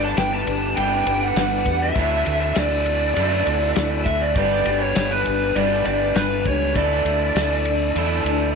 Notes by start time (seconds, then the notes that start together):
Already playing: G1 G2 D3 G3 B3 D4 G4 B4 D5
0.04 A5
0.16 G1 G3 D4 G4 B4 G5, snare, ride, tambourine
0.34 A5
0.46 G1 D4 G4 B4, ride
0.76 G1 G2 D3 G3 B3 D4 G4 B4 G5, ride
1.05 G1 D4 G4 B4, ride
1.24 F#5
1.34 G1 G3 D4 G4 B4 F#5, snare, ride, tambourine
1.65 E2 G4 B4, kick, ride
1.69 D4
1.82 E5
1.95 D2 D3 F#3 A3 D4 E4 F#4 A4 E5 F#5 A5, kick, ride
2.26 D2 E4 F#4 A4, ride
2.41 E5
2.56 D2 A3 E4 F#4 A4 D5, snare, ride, tambourine
2.85 E4 F#4 A4, ride
3.16 F#2 D3 F#3 A3 D4 E4 F#4 A4, ride
3.46 D2 E4 F#4 A4, ride
3.75 D2 A3 E4 F#4 A4, snare, ride, tambourine
4.04 E4 F#4 A4 E5, kick, ride
4.21 D5
4.35 G1 G2 D3 G3 B3 D4 G4 B4 D5 G5, kick, ride
4.65 G1 D4 G4 B4, ride
4.80 C#5
4.94 G1 G3 D4 G4 B4, snare, ride, tambourine
5.11 B4
5.25 G1 D4 G4 B4, ride
5.55 G1 G2 D3 G3 B3 D4 G4 B4 D5, ride
5.85 G1 D4 G4 B4 D5, ride
6.15 G1 G3 D4 G4 B4, snare, ride, tambourine
6.46 C#2 D4 G4 B4 C#5, kick, ride
6.75 D2 D3 A3 D4 E4 A4 D5 E5, kick, ride
7.05 D2 E4 A4, ride
7.09 D4
7.35 D2 A3 D4, snare, ride, tambourine
7.39 E4 A4
7.65 E4 A4, ride
7.70 D4
7.95 E2 D3 A3 D4 E4 A4, ride
8.24 D2 E4 A4, ride
8.29 D4